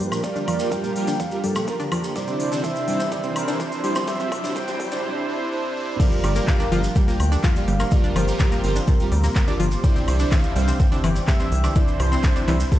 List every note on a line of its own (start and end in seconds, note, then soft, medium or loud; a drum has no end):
0.00 2.12 F3 medium
0.00 2.12 A#3 medium
0.00 5.00 D4 medium
0.00 5.00 G4 medium
0.00 0.20 C5 loud
0.00 riser medium
0.12 0.17 A#3 medium
0.12 closed hi-hat soft
0.12 high woodblock medium
0.12 maracas medium
0.24 0.57 G3 medium
0.24 0.57 F4 medium
0.24 0.57 G4 medium
0.24 0.57 A#4 medium
0.24 0.68 D5 loud
0.24 kick loud
0.24 closed hi-hat medium
0.24 maracas medium
0.36 0.41 D4 loud
0.36 closed hi-hat soft
0.36 maracas soft
0.48 0.53 F3 loud
0.48 open hi-hat loud
0.48 high woodblock medium
0.59 0.93 G3 medium
0.59 0.93 F4 medium
0.59 0.93 G4 medium
0.59 0.93 A#4 loud
0.59 closed hi-hat soft
0.59 maracas medium
0.71 0.77 G3 medium
0.71 1.21 G5 loud
0.71 kick loud
0.71 closed hi-hat medium
0.71 maracas medium
0.84 0.89 A#3 medium
0.84 closed hi-hat soft
0.84 maracas soft
0.96 1.05 G3 loud
0.96 1.05 F4 medium
0.96 1.05 G4 medium
0.96 1.05 A#4 loud
0.96 open hi-hat medium
1.08 1.15 D4 medium
1.08 closed hi-hat soft
1.08 maracas medium
1.20 1.25 F3 medium
1.20 1.43 F5 loud
1.20 kick loud
1.20 closed hi-hat medium
1.20 maracas medium
1.31 1.38 G3 medium
1.31 1.38 F4 medium
1.31 1.38 G4 medium
1.31 1.38 A#4 medium
1.31 closed hi-hat soft
1.31 maracas soft
1.44 1.49 G3 medium
1.44 1.66 A4 loud
1.44 open hi-hat loud
1.55 1.61 A#3 medium
1.55 closed hi-hat soft
1.55 high woodblock medium
1.55 maracas medium
1.68 1.74 G3 loud
1.68 1.74 F4 medium
1.68 1.74 G4 medium
1.68 1.74 A#4 loud
1.68 2.12 A#4 loud
1.68 kick loud
1.68 closed hi-hat medium
1.68 maracas medium
1.80 1.85 D4 loud
1.80 closed hi-hat soft
1.80 maracas soft
1.92 1.97 F3 loud
1.92 open hi-hat medium
1.92 high woodblock medium
2.04 closed hi-hat soft
2.04 maracas medium
2.16 2.49 C3 medium
2.16 5.01 E3 medium
2.16 2.21 G3 medium
2.16 5.01 C4 medium
2.16 2.49 D4 medium
2.16 2.49 E4 medium
2.16 2.49 C5 medium
2.16 2.60 D5 loud
2.16 kick loud
2.16 closed hi-hat medium
2.16 maracas medium
2.28 2.33 C4 medium
2.28 closed hi-hat soft
2.28 maracas soft
2.40 open hi-hat loud
2.52 2.85 C3 medium
2.52 2.59 D4 medium
2.52 2.85 D4 medium
2.52 2.85 E4 medium
2.52 2.85 C5 loud
2.52 closed hi-hat soft
2.52 maracas medium
2.64 2.69 E3 medium
2.64 3.13 E5 loud
2.64 kick loud
2.64 closed hi-hat medium
2.64 maracas medium
2.76 closed hi-hat soft
2.76 maracas soft
2.88 2.97 C3 medium
2.88 2.93 G3 medium
2.88 2.97 D4 medium
2.88 2.97 E4 medium
2.88 2.97 C5 loud
2.88 open hi-hat medium
3.00 3.05 C4 medium
3.00 closed hi-hat soft
3.00 maracas medium
3.12 3.45 C3 medium
3.12 3.17 G3 medium
3.12 3.45 D4 medium
3.12 3.45 E4 medium
3.12 3.45 C5 medium
3.12 3.35 D5 loud
3.12 kick loud
3.12 closed hi-hat medium
3.12 maracas medium
3.23 3.29 C4 medium
3.23 closed hi-hat soft
3.23 maracas soft
3.36 3.58 A#4 loud
3.36 open hi-hat loud
3.36 high woodblock medium
3.48 3.81 C3 medium
3.48 3.55 D4 medium
3.48 3.81 D4 medium
3.48 3.81 E4 medium
3.48 3.81 C5 loud
3.48 closed hi-hat soft
3.48 maracas medium
3.60 3.65 E3 medium
3.60 4.04 C5 loud
3.60 kick loud
3.60 closed hi-hat medium
3.60 maracas medium
3.72 closed hi-hat soft
3.72 maracas soft
3.84 3.93 C3 medium
3.84 3.89 G3 medium
3.84 3.93 D4 medium
3.84 3.93 E4 medium
3.84 3.93 C5 loud
3.84 open hi-hat loud
3.95 4.01 C4 medium
3.95 closed hi-hat soft
3.95 high woodblock medium
3.95 maracas medium
4.08 4.41 C3 medium
4.08 4.13 G3 medium
4.08 4.41 D4 medium
4.08 4.41 E4 medium
4.08 4.41 C5 medium
4.08 4.53 E5 loud
4.08 kick loud
4.08 closed hi-hat medium
4.08 maracas medium
4.20 4.25 C4 medium
4.20 closed hi-hat soft
4.20 maracas soft
4.32 kick loud
4.32 open hi-hat loud
4.32 high woodblock medium
4.44 4.54 C3 medium
4.44 4.51 D4 medium
4.44 4.54 D4 medium
4.44 4.54 E4 medium
4.44 4.54 C5 loud
4.44 closed hi-hat soft
4.44 maracas medium
4.56 4.89 C3 medium
4.56 4.61 G3 medium
4.56 4.89 D4 medium
4.56 4.89 E4 medium
4.56 4.89 C5 medium
4.56 5.00 G5 loud
4.56 kick loud
4.56 closed hi-hat medium
4.56 maracas medium
4.68 4.73 C4 medium
4.68 closed hi-hat soft
4.68 maracas soft
4.80 kick loud
4.80 open hi-hat loud
4.91 5.02 C3 medium
4.91 4.99 D4 medium
4.91 5.02 D4 medium
4.91 5.02 E4 medium
4.91 5.02 C5 loud
4.91 closed hi-hat soft
4.91 maracas medium
5.04 5.26 C3 medium
5.04 5.26 D4 medium
5.04 5.26 E4 medium
5.04 5.26 C5 medium
5.28 5.50 C3 medium
5.28 5.50 D4 medium
5.28 5.50 E4 medium
5.28 5.50 C5 medium
5.52 5.74 C3 medium
5.52 5.74 D4 medium
5.52 5.74 E4 medium
5.52 5.74 C5 medium
5.76 5.98 C3 medium
5.76 5.98 D4 medium
5.76 5.98 E4 medium
5.76 5.98 C5 medium
6.00 6.05 F3 medium
6.00 9.80 F3 medium
6.00 6.33 G3 medium
6.00 9.80 A#3 medium
6.00 7.90 D4 medium
6.00 6.33 F4 medium
6.00 6.33 G4 medium
6.00 12.79 G4 medium
6.00 6.33 A#4 medium
6.00 6.49 D5 loud
6.00 kick loud
6.00 closed hi-hat medium
6.00 crash loud
6.00 maracas medium
6.12 closed hi-hat soft
6.12 maracas soft
6.24 6.41 G1 loud
6.24 6.29 G3 medium
6.24 open hi-hat loud
6.24 high woodblock medium
6.36 6.69 G3 medium
6.36 6.41 A#3 medium
6.36 6.69 F4 medium
6.36 6.69 G4 medium
6.36 6.69 A#4 loud
6.36 closed hi-hat soft
6.36 maracas medium
6.47 6.97 F5 medium
6.47 kick loud
6.47 clap loud
6.47 closed hi-hat loud
6.47 maracas medium
6.60 6.65 D4 loud
6.60 closed hi-hat soft
6.60 maracas soft
6.72 6.89 G1 medium
6.72 6.77 F3 loud
6.72 6.81 G3 loud
6.72 6.81 F4 medium
6.72 6.81 G4 medium
6.72 6.81 A#4 loud
6.72 open hi-hat medium
6.84 closed hi-hat soft
6.84 maracas medium
6.95 7.01 G3 medium
6.95 7.43 G5 loud
6.95 kick loud
6.95 closed hi-hat loud
6.95 maracas medium
7.08 7.14 G3 medium
7.08 7.13 A#3 medium
7.08 7.14 F4 medium
7.08 7.14 G4 medium
7.08 7.14 A#4 loud
7.08 closed hi-hat soft
7.08 maracas soft
7.20 7.37 D2 medium
7.20 open hi-hat loud
7.20 high woodblock medium
7.32 7.39 D4 medium
7.32 closed hi-hat soft
7.32 maracas medium
7.43 7.49 F3 medium
7.43 7.93 F5 medium
7.43 kick loud
7.43 clap loud
7.43 closed hi-hat loud
7.43 maracas medium
7.56 7.62 G3 loud
7.56 7.62 F4 medium
7.56 7.62 G4 medium
7.56 7.62 D5 loud
7.56 closed hi-hat soft
7.56 maracas soft
7.68 7.85 G1 loud
7.68 7.73 G3 medium
7.68 open hi-hat medium
7.80 7.85 A#3 medium
7.80 closed hi-hat soft
7.80 high woodblock medium
7.80 maracas medium
7.91 8.25 G3 medium
7.91 9.82 C4 medium
7.91 8.25 F4 medium
7.91 8.25 G4 medium
7.91 8.25 A#4 medium
7.91 8.17 D5 loud
7.91 kick loud
7.91 closed hi-hat loud
7.91 maracas medium
8.04 8.09 D4 loud
8.04 closed hi-hat soft
8.04 maracas soft
8.16 8.33 G1 loud
8.16 8.21 F3 loud
8.16 8.89 C5 loud
8.16 open hi-hat loud
8.16 high woodblock medium
8.28 8.61 G3 medium
8.28 8.61 F4 medium
8.28 8.61 G4 medium
8.28 8.61 A#4 loud
8.28 closed hi-hat soft
8.28 maracas medium
8.39 8.45 G3 medium
8.39 kick loud
8.39 clap loud
8.39 closed hi-hat loud
8.39 maracas medium
8.52 8.57 A#3 medium
8.52 closed hi-hat soft
8.52 maracas soft
8.64 8.81 G1 medium
8.64 8.73 G3 loud
8.64 8.73 F4 medium
8.64 8.73 G4 medium
8.64 8.73 A#4 loud
8.64 open hi-hat medium
8.76 8.83 D4 medium
8.76 closed hi-hat soft
8.76 maracas medium
8.87 8.93 F3 medium
8.87 9.59 A#4 loud
8.87 kick loud
8.87 closed hi-hat medium
8.87 maracas medium
9.00 9.06 G3 medium
9.00 9.06 F4 medium
9.00 9.06 G4 medium
9.00 9.06 A#4 loud
9.00 closed hi-hat soft
9.00 maracas soft
9.12 9.29 D2 medium
9.12 9.17 G3 medium
9.12 open hi-hat loud
9.24 9.29 A#3 medium
9.24 closed hi-hat soft
9.24 maracas medium
9.35 kick loud
9.35 clap loud
9.35 closed hi-hat medium
9.35 maracas medium
9.48 9.54 G3 loud
9.48 9.53 D4 loud
9.48 9.54 F4 medium
9.48 9.54 G4 medium
9.48 9.54 D5 loud
9.48 closed hi-hat soft
9.48 maracas soft
9.60 9.77 G1 loud
9.60 9.65 F3 loud
9.60 9.85 C5 medium
9.60 open hi-hat loud
9.71 closed hi-hat soft
9.71 maracas medium
9.84 10.17 C3 medium
9.84 12.79 E3 medium
9.84 9.89 G3 medium
9.84 12.79 C4 medium
9.84 11.74 D4 medium
9.84 10.17 D4 medium
9.84 10.17 E4 medium
9.84 10.17 C5 medium
9.84 10.31 D5 loud
9.84 kick loud
9.84 closed hi-hat medium
9.84 maracas medium
9.96 10.01 C4 medium
9.96 closed hi-hat soft
9.96 maracas soft
10.08 10.25 C2 loud
10.08 open hi-hat loud
10.08 high woodblock medium
10.19 10.53 C3 loud
10.19 10.27 D4 medium
10.19 10.53 D4 medium
10.19 10.53 E4 medium
10.19 10.53 C5 loud
10.19 closed hi-hat soft
10.19 maracas medium
10.31 10.37 E3 medium
10.31 10.81 F5 loud
10.31 kick loud
10.31 clap loud
10.31 closed hi-hat medium
10.31 maracas medium
10.44 closed hi-hat soft
10.44 maracas soft
10.56 10.73 C2 medium
10.56 10.65 C3 loud
10.56 10.61 G3 medium
10.56 10.65 D4 medium
10.56 10.65 E4 medium
10.56 10.65 C5 loud
10.56 open hi-hat loud
10.68 10.73 C4 medium
10.68 closed hi-hat soft
10.68 maracas medium
10.80 11.27 G5 loud
10.80 kick loud
10.80 closed hi-hat medium
10.80 maracas medium
10.92 10.98 C3 medium
10.92 10.97 D4 loud
10.92 10.98 D4 medium
10.92 10.98 E4 medium
10.92 10.98 C5 loud
10.92 closed hi-hat soft
10.92 maracas soft
11.04 11.21 G1 medium
11.04 11.09 E3 loud
11.04 open hi-hat loud
11.04 high woodblock medium
11.16 closed hi-hat soft
11.16 maracas medium
11.27 11.33 G3 medium
11.27 11.77 E5 medium
11.27 kick loud
11.27 clap loud
11.27 closed hi-hat medium
11.27 maracas medium
11.40 11.46 C3 loud
11.40 11.45 C4 medium
11.40 11.46 D4 medium
11.40 11.46 E4 medium
11.40 11.46 E5 loud
11.40 closed hi-hat soft
11.40 maracas soft
11.52 11.69 C2 loud
11.52 open hi-hat loud
11.64 11.71 D4 medium
11.64 closed hi-hat soft
11.64 high woodblock medium
11.64 maracas medium
11.75 12.09 C3 medium
11.75 11.81 E3 medium
11.75 12.09 D4 medium
11.75 12.79 E4 medium
11.75 12.09 E4 medium
11.75 12.09 C5 medium
11.75 11.99 D5 loud
11.75 kick loud
11.75 closed hi-hat medium
11.75 maracas medium
11.88 closed hi-hat soft
11.88 maracas soft
12.00 12.17 C2 loud
12.00 12.05 G3 medium
12.00 12.68 C5 loud
12.00 open hi-hat loud
12.00 high woodblock medium
12.12 12.45 C3 medium
12.12 12.17 C4 medium
12.12 12.45 D4 medium
12.12 12.45 E4 medium
12.12 12.45 C5 loud
12.12 closed hi-hat soft
12.12 maracas medium
12.23 kick loud
12.23 clap loud
12.23 closed hi-hat medium
12.23 maracas medium
12.36 12.41 D4 loud
12.36 closed hi-hat soft
12.36 maracas soft
12.48 12.65 C2 loud
12.48 12.57 C3 loud
12.48 12.53 E3 loud
12.48 12.57 D4 medium
12.48 12.57 E4 medium
12.48 12.57 C5 loud
12.48 clap medium
12.48 open hi-hat medium
12.60 closed hi-hat soft
12.60 maracas medium
12.72 12.77 G3 medium
12.72 12.79 A#4 medium
12.72 kick loud
12.72 closed hi-hat medium
12.72 maracas medium